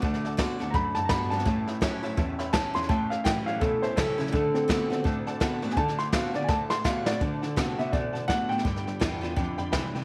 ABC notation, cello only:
X:1
M:4/4
L:1/8
Q:"Swing" 1/4=167
K:Dmix
V:1 name="Cello" clef=bass
D,,3 D,, F,, F,, G,, G,, | A,,3 A,, E,,3 E,, | A,, A,, A,, A,, B,, B,, ^C, C, | D,3 D, A,,3 A,, |
D,3 D, A,,3 A,, | D, D, C, C, B,, B,, A,, A,, | G,, G,, E,, E,, =F,, F,, C,, C,, |]